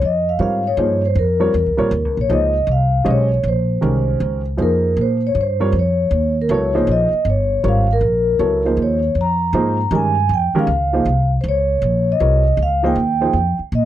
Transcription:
0.02 F2 D#5
0.29 F5
0.39 G#2 G3 C4 F4 A#4 C#5 F5
0.67 C#5
0.77 G2 F3 A#3 D#4 G#4 C5
1.05 C5
1.15 F2 A#4
1.40 G3 C4 F4 A#4 C#5
1.54 E2
1.66 C#2
1.77 A#1 G3 C4 F4 A#4 C#5
1.91 D#2
2.05 C#2
2.17 A#1 C#5
2.29 C#2 F3 A#3 D#4 G#4 C5 D#5
2.67 C2
2.72 F5
3.04 B1 G#3 C#4 G4 C5 D#5
3.11 C#5
3.43 A#1
3.48 C5
3.81 C2 D#3 G#3 C#4 G4 A#4
4.20 C#2
4.57 F2 F3 A#3 D#4 G#4 C5
4.62 A#4
4.97 A#2
5.01 C5
5.27 C#5
5.35 G2
5.41 C5
5.60 G3 C4 F4 A#4 C#5
5.72 F2
5.79 C#5
6.11 D#2
6.42 A#4
6.49 C#2 F#3 B3 E4 A4 C#5
6.54 C#5
6.74 F3 A#3 D#4 G#4 C5
6.87 A#1
6.92 D#5
7.12 muted upright bass stroke
7.25 G1
7.30 C#5
7.64 G#1 G3 C4 F4 A#4 C#5
7.68 F5
7.93 A#4
8.01 A#1
8.39 C#2 F#3 B3 E4 A4 C#5
8.65 F3 A#3 D#4 G#4 C5
8.77 D#2
8.82 C#5
9.15 F2
9.21 A#5
9.53 G#2 F3 A#3 D#4 G#4 C5
9.91 G2 D#3 G#3 C#4 G4 A#4
9.95 G#5
10.29 F2
10.34 G5
10.54 D#3 G#3 C#4 G4 A#4, muted upright bass stroke
10.59 F5
10.67 C#2
10.93 F3 A#3 D#4 G#4 C5
11.05 C2
11.41 C#2 C5
11.48 C#5
11.82 A#1
12.12 D#5
12.20 C2 G3 C4 F4 A#4 C#5
12.57 C#2
12.63 F5
12.83 F3 A#3 D#4 G#4 C5 G5
12.96 D#2
13.21 F3 A#3 D#4 G#4 C5
13.33 F2
13.59 muted upright bass stroke
13.72 A#2 D#5

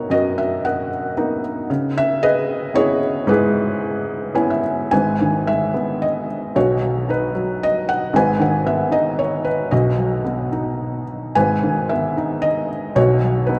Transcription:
Already playing: B2 A#3 B3 D#4 F#4 A#4 C#5 D#5 E5
0.10 F#2 F#4 A#4 D#5
0.38 E5
0.65 A#4 D#5 F#5
1.17 A#3 B3 D#4
1.70 C#3
1.98 E5
2.23 G#4 B4 D#5
2.74 B3 C#4 E4 G#4 C#5
3.27 G#2 E4 G#4 B4
4.35 B3 C#4 E4 G#5
4.50 E5
4.91 G#1 G#2 B4 G#5
5.21 D#3
5.47 G#3 E5
5.74 B3
6.02 D#5
6.56 B1 B2 F#4 C#5
6.82 F#3
7.09 D#4 B4
7.35 F#3
7.63 D#5
7.89 F#5
8.13 G#1 G#2 B4 G#5
8.40 D#3 F#5
8.66 B3 E5
8.91 D#4 D#5
9.19 C#5
9.44 B4
9.71 B1 B2 F#4 D#5
9.98 F#3
10.25 B3
10.52 D#4
11.35 G#1 G#2 B4 G#5
11.63 D#3
11.89 B3 E5
12.17 D#4
12.42 D#5
12.95 B1 B2 F#4 C#5
13.23 F#3
13.46 B3 D#4 B4

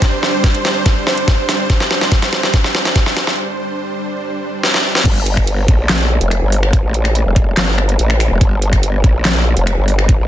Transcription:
Already playing: G3 D4 C5
0.02 kick, snare, closed hi-hat
0.23 snare
0.44 kick, snare, closed hi-hat
0.55 closed hi-hat
0.65 snare, closed hi-hat
0.86 kick, snare, closed hi-hat
1.07 snare
1.18 closed hi-hat
1.28 kick, snare, closed hi-hat
1.49 snare, open hi-hat
1.70 kick, snare, closed hi-hat
1.80 snare
1.91 snare
2.01 snare
2.12 kick, snare, closed hi-hat
2.22 snare, closed hi-hat
2.33 snare, closed hi-hat
2.43 snare
2.54 kick, snare, closed hi-hat
2.64 snare
2.75 snare
2.85 snare, closed hi-hat
2.96 kick, snare, closed hi-hat
3.06 snare
3.17 snare, open hi-hat
3.27 snare
4.63 snare
4.74 snare
4.95 snare
5.05 G1, kick, closed hi-hat, crash
5.26 closed hi-hat
5.37 finger snap, kick, closed hi-hat
5.47 closed hi-hat
5.68 A#1, kick, closed hi-hat
5.89 A#1, finger snap, snare, clap, closed hi-hat
6.21 F1, closed hi-hat
6.31 finger snap, closed hi-hat
6.42 G1
6.52 open hi-hat
6.63 finger snap
6.73 kick, closed hi-hat
6.84 A1
6.94 closed hi-hat
7.05 finger snap, closed hi-hat
7.15 closed hi-hat
7.26 F1
7.36 kick, closed hi-hat
7.57 G1, snare, clap, closed hi-hat
7.78 finger snap
7.89 closed hi-hat
7.99 A1, closed hi-hat
8.10 finger snap
8.20 finger snap, open hi-hat
8.31 F1
8.41 G1, kick, closed hi-hat
8.62 closed hi-hat
8.73 finger snap, kick, closed hi-hat
8.83 closed hi-hat
9.04 A#1, kick, closed hi-hat
9.25 A#1, finger snap, snare, clap, closed hi-hat
9.57 F1, closed hi-hat
9.67 finger snap, closed hi-hat
9.78 G1
9.88 open hi-hat
9.99 finger snap
10.09 kick, closed hi-hat
10.20 A1

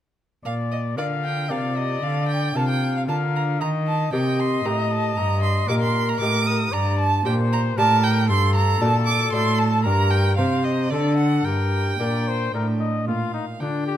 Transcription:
0.45 A#2 D5 F5
0.71 D#5
0.97 D3 A#3 F4 D5 F5
1.25 G5
1.49 C3 A#3 F4 D5 F5
1.78 D#5
2.03 D3 F5
2.29 G5
2.55 C3 A#3 F4 F5 A5
2.69 G5
2.97 F5
3.06 D3 A#3 F4 F5 A5
3.36 A#5
3.60 D#3 D#5 A#5
3.87 A5
4.12 C3 A#3 G4 D#5 G5
4.40 C6
4.65 A2 A#3 G4 D#5 A#5
4.91 A5
5.17 G2 A#5
5.43 C6
5.68 A#2 A#3 G4 A#4 D#5 D6
5.82 C6
6.09 A#5
6.21 A2 A#3 G4 D#5 D6
6.47 D#6
6.72 G2 D5 A#5
6.99 A5
7.24 A#2 A#3 G4 C5 D5 G5
7.53 A#5
7.77 A2 A#3 G4 A#4 D5 A5
8.03 G5
8.28 G2 A4 C6
8.56 A#5
8.81 A#2 A3 F#4 D5 A5
9.06 D6
9.33 A2 A3 F#4 D5 C6
9.59 A5
9.84 G2 G4 A#4 D5 A#5
10.11 G5
10.37 C3 G4 C5 F5
10.64 D#5
10.90 D3 D4 A4 D5
11.17 F#5
11.45 G2 A#4 G5
12.00 A#2 D4 A#4 D5
12.28 C5
12.54 A2 D4 A#4
12.80 D#5
13.07 A#2 F4 F5
13.34 D#4
13.60 D3 D4 F4 G5
13.86 G4

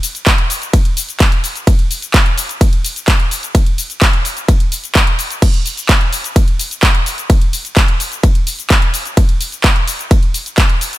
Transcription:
0.03 open hi-hat, shaker
0.15 closed hi-hat, shaker
0.27 kick, clap, closed hi-hat, ride, shaker
0.38 closed hi-hat
0.50 open hi-hat, shaker
0.62 closed hi-hat, shaker
0.73 kick, closed hi-hat, ride, shaker
0.85 closed hi-hat
0.97 open hi-hat, shaker
1.09 closed hi-hat, shaker
1.20 kick, clap, closed hi-hat, ride, shaker
1.32 closed hi-hat
1.44 open hi-hat, shaker
1.55 closed hi-hat, shaker
1.67 kick, closed hi-hat, ride, shaker
1.79 closed hi-hat
1.91 open hi-hat, shaker
2.02 closed hi-hat, shaker
2.14 kick, clap, closed hi-hat, ride, shaker
2.26 closed hi-hat
2.38 open hi-hat, shaker
2.49 closed hi-hat, shaker
2.61 kick, closed hi-hat, ride, shaker
2.73 closed hi-hat
2.84 open hi-hat, shaker
2.96 closed hi-hat, shaker
3.08 kick, clap, closed hi-hat, ride, shaker
3.20 closed hi-hat
3.31 open hi-hat, shaker
3.43 closed hi-hat, shaker
3.55 kick, closed hi-hat, ride, shaker
3.66 closed hi-hat
3.78 open hi-hat, shaker
3.90 closed hi-hat, shaker
4.02 kick, clap, closed hi-hat, ride, shaker
4.13 closed hi-hat
4.25 open hi-hat, shaker
4.37 closed hi-hat, shaker
4.48 kick, closed hi-hat, ride, shaker
4.60 closed hi-hat
4.72 open hi-hat, shaker
4.84 closed hi-hat, shaker
4.95 kick, clap, closed hi-hat, ride, shaker
5.07 closed hi-hat
5.19 open hi-hat, shaker
5.30 closed hi-hat, shaker
5.42 kick, closed hi-hat, ride, crash, shaker
5.54 closed hi-hat
5.66 open hi-hat, shaker
5.77 closed hi-hat, shaker
5.89 kick, clap, closed hi-hat, ride, shaker
6.01 closed hi-hat
6.13 open hi-hat, shaker
6.24 closed hi-hat, shaker
6.36 kick, closed hi-hat, ride, shaker
6.48 closed hi-hat
6.59 open hi-hat, shaker
6.71 closed hi-hat, shaker
6.83 kick, clap, closed hi-hat, ride, shaker
6.95 closed hi-hat
7.06 open hi-hat, shaker
7.18 closed hi-hat, shaker
7.30 kick, closed hi-hat, ride, shaker
7.41 closed hi-hat
7.53 open hi-hat, shaker
7.65 closed hi-hat, shaker
7.77 kick, clap, closed hi-hat, ride, shaker
7.88 closed hi-hat
8.00 open hi-hat, shaker
8.12 closed hi-hat, shaker
8.23 kick, closed hi-hat, ride, shaker
8.35 closed hi-hat
8.47 open hi-hat, shaker
8.59 closed hi-hat, shaker
8.70 kick, clap, closed hi-hat, ride, shaker
8.82 closed hi-hat
8.94 open hi-hat, shaker
9.05 closed hi-hat, shaker
9.17 kick, closed hi-hat, ride, shaker
9.29 closed hi-hat
9.41 open hi-hat, shaker
9.52 closed hi-hat, shaker
9.64 kick, clap, closed hi-hat, ride, shaker
9.76 closed hi-hat
9.87 open hi-hat, shaker
9.99 closed hi-hat, shaker
10.11 kick, closed hi-hat, ride, shaker
10.23 closed hi-hat
10.34 open hi-hat, shaker
10.46 closed hi-hat, shaker
10.58 kick, clap, closed hi-hat, ride, shaker
10.70 closed hi-hat
10.81 open hi-hat, shaker
10.93 closed hi-hat, shaker

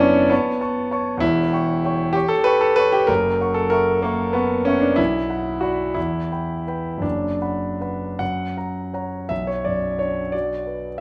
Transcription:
Already playing: F#1 F#2 B3 D4
0.00 C#4 C#5 A5 C#6
0.30 B3 C#5 A5 C#6
0.61 A5 C#6
0.91 C#5 A5 C#6
1.17 E1 E2 E4
1.53 G5 C#6
1.85 C#5 G5 C#6
2.13 G4 C#5 G5 C#6
2.28 A4
2.44 B4 G5 C#6
2.61 A4
2.76 B4 C#5 G5 C#6
2.92 G4
3.07 F#1 F#2 A#4
3.41 F#5 C#6
3.54 A4
3.70 A#4 E5 F#5 C#6
4.02 A#3 E5 F#5 C#6
4.33 B3 F#5 C#6
4.65 C#4 E5 F#5 C#6
4.80 D4
4.96 B1 E4
5.30 F#5 B5
5.61 F#4 D5 F#5 B5
5.94 E2 E4
6.32 G5 B5
6.67 B4 G5 B5
6.98 F#2 D4
7.03 F#1
7.42 F#5 B5
7.81 B4 F#5 B5
8.19 F#2 F#5
8.57 F#5 A#5
8.94 C#5 F#5 A#5
9.29 B1 E5
9.47 C#5
9.65 F#2 D5
9.99 D4 C#5
10.32 F#4 D5
10.67 B4

